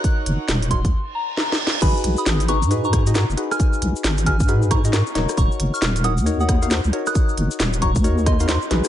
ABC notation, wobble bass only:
X:1
M:4/4
L:1/16
Q:"Swing 16ths" 1/4=135
K:G#dor
V:1 name="Wobble bass" clef=bass
z2 F,,, z D,,,3 D,, z8 | G,,, z B,,, z G,,,3 G,,6 F,,, z2 | z2 B,,, z G,,,3 G,,6 z D,,, z | D,,, z F,,, z D,,,3 D,,6 C,, z2 |
z2 F,,, z D,,,3 D,,6 z A,,, z |]